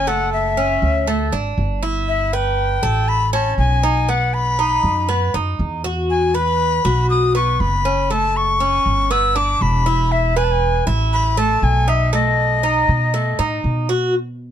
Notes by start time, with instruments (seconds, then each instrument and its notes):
Already playing: upright bass F#1
0.07 cuban tres A3, flute F#5
0.33 flute E5
0.57 cuban tres C#4
0.82 upright bass D2
1.07 cuban tres A3
1.32 upright bass G#1, cuban tres D4
1.58 upright bass G1
1.83 cuban tres E4
2.08 flute E5
2.33 cuban tres B4, flute G5
2.83 upright bass A1, cuban tres A4
3.08 flute B5
3.33 cuban tres C#4, flute A5
3.58 upright bass B1, flute G#5
3.83 cuban tres D#4
4.09 cuban tres B3, flute F#5
4.34 flute B5
4.59 cuban tres D#4
4.83 upright bass F#2
5.09 cuban tres B3
5.34 upright bass F#2, cuban tres D#4
5.59 upright bass E2
5.84 cuban tres F#4
6.10 flute G#5
6.34 cuban tres B4, flute B5
6.85 upright bass B1, cuban tres F#4
7.10 flute D#6
7.35 cuban tres B3, flute C#6
7.60 upright bass F#1, flute B5
7.85 cuban tres C#4
8.10 cuban tres A3, flute A5
8.37 flute C#6
8.60 cuban tres C#4
8.86 upright bass G1
9.11 cuban tres B3, flute E6
9.36 cuban tres D4, flute D6
9.61 upright bass E1, flute B5
9.86 cuban tres E4
10.12 flute E5
10.36 cuban tres B4, flute G#5
10.44 flute A5
10.51 flute G#5
10.87 upright bass A1, cuban tres E4
11.13 flute B5
11.37 cuban tres A3, flute A5
11.62 upright bass B1, flute G#5
11.88 cuban tres D#4, flute E5
12.13 cuban tres A3, flute D#5
12.63 cuban tres D#4
12.89 upright bass B2
13.14 cuban tres A3
13.39 upright bass A2, cuban tres D#4
13.64 upright bass B2
13.89 cuban tres F#4